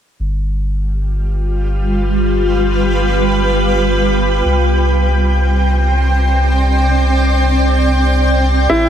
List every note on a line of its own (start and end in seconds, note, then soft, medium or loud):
0.20 4.42 G1 medium
0.20 4.45 G3 medium
0.51 5.12 F4 medium
0.92 4.45 B4 medium
1.26 8.89 G5 medium
4.45 8.67 C2 medium
4.45 8.89 C4 medium
4.64 8.89 C5 medium
5.25 8.89 D5 medium
8.69 8.89 A1 medium
8.69 8.87 E4 medium